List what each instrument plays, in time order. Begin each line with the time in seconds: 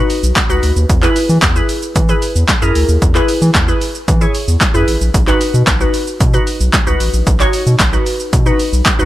Already playing: synth pluck D#4 F#4 B4
0.10 open hi-hat, shaker
0.23 analog synth bass B1, shaker
0.36 kick, snare, clap, closed hi-hat, shaker
0.49 analog synth bass C#2, synth pluck D#4 F#4 B4, shaker
0.63 analog synth bass D2, open hi-hat, shaker
0.76 analog synth bass D#2, shaker
0.89 analog synth bass E2, kick, closed hi-hat, shaker
1.03 synth pluck E4 G#4 B4, clap, shaker
1.16 open hi-hat, shaker
1.29 analog synth bass E3, shaker
1.42 analog synth bass E2, kick, snare, clap, closed hi-hat, shaker
1.56 synth pluck E4 G#4 B4, shaker
1.69 open hi-hat, shaker
1.82 shaker
1.96 analog synth bass E3, kick, closed hi-hat, shaker
2.09 synth pluck E4 G#4 B4, shaker
2.22 open hi-hat, shaker
2.36 analog synth bass E2, shaker
2.48 kick, snare, clap, closed hi-hat, shaker
2.62 analog synth bass F#2, synth pluck E4 G#4 A#4, shaker
2.75 analog synth bass D2, open hi-hat, shaker
2.89 analog synth bass D#2, shaker
3.02 analog synth bass E2, kick, closed hi-hat, shaker
3.15 synth pluck E4 G#4 B4, clap, shaker
3.28 open hi-hat, shaker
3.42 analog synth bass E3, shaker
3.55 analog synth bass E2, kick, snare, clap, closed hi-hat, shaker
3.68 synth pluck E4 G#4 B4, shaker
3.81 open hi-hat, shaker
3.95 shaker
4.08 analog synth bass E3, kick, closed hi-hat, shaker
4.21 synth pluck E4 G#4 C#5, shaker
4.35 open hi-hat, shaker
4.48 analog synth bass E2, shaker
4.61 kick, snare, clap, closed hi-hat, shaker
4.74 analog synth bass F#2, synth pluck E4 G#4 B4, shaker
4.88 analog synth bass A1, open hi-hat, shaker
5.01 analog synth bass A#1, shaker
5.14 analog synth bass B1, kick, closed hi-hat, shaker
5.27 synth pluck D#4 F#4 B4, clap, shaker
5.41 open hi-hat, shaker
5.54 analog synth bass B2, shaker
5.67 analog synth bass B1, kick, snare, clap, closed hi-hat, shaker
5.80 synth pluck D#4 F#4 B4, shaker
5.94 open hi-hat, shaker
6.07 shaker
6.20 analog synth bass B2, kick, closed hi-hat, shaker
6.34 synth pluck D#4 F#4 B4, shaker
6.47 open hi-hat, shaker
6.60 analog synth bass B1, shaker
6.73 kick, snare, clap, closed hi-hat, shaker
6.87 analog synth bass C#2, synth pluck D#4 F#4 B4, shaker
7.00 analog synth bass A1, open hi-hat, shaker
7.14 analog synth bass A#1, shaker
7.27 analog synth bass B1, kick, closed hi-hat, shaker
7.40 synth pluck D#4 F#4 C#5, clap, shaker
7.53 open hi-hat, shaker
7.67 analog synth bass B2, shaker
7.80 analog synth bass B1, kick, snare, clap, closed hi-hat, shaker
7.93 synth pluck D#4 F#4 B4, shaker
8.06 open hi-hat, shaker
8.20 shaker
8.33 analog synth bass B2, kick, closed hi-hat, shaker
8.46 synth pluck D#4 F#4 B4, shaker
8.59 open hi-hat, shaker
8.73 analog synth bass B1, shaker
8.86 kick, snare, clap, closed hi-hat, shaker
8.99 analog synth bass C#2, synth pluck D#4 F#4 B4, shaker